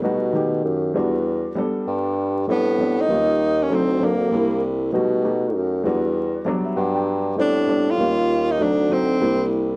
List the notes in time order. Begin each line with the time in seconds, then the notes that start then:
0.02 B2 G3 A3 D#4 F#4
0.33 D#3 A3 D#4 G4
0.64 F#2
0.94 E2 G3 B3 D4 F#4
1.55 G3 B3 D4 A4
1.87 G2
2.47 A2 G3 B3 C4 D4
2.51 B3
2.78 G3 B3 C4 D4
3.01 D#4
3.08 D#2 G3 A#3 C#4 F4
3.63 C#4
3.70 D2 F#3 A3 C4 D#4
3.75 C4
4.00 F#3 C4 D4 A4
4.05 A#3
4.31 C2 G3 A#3 D4 E4
4.92 B2 G3 A3 D#4 F#4
5.23 A3 D#4 F#4 G4
5.54 F#2
5.84 E2 G3 B3 D4 F#4
6.45 F#3 G3 B3 D4 D5
6.65 E5
6.76 G2 F#5
6.95 G5
7.36 A2 G3 B3 C4 D4
7.41 D4
7.67 G3 B3 C4 D4
7.91 F4
7.98 D#2 G3 A#3 C#4 F4
8.51 D#4
8.59 D2 F#3 A3 C4 D#4
8.63 D4
8.89 F#3 A3 C4 D#4
9.21 C2 G3 A#3 D4 E4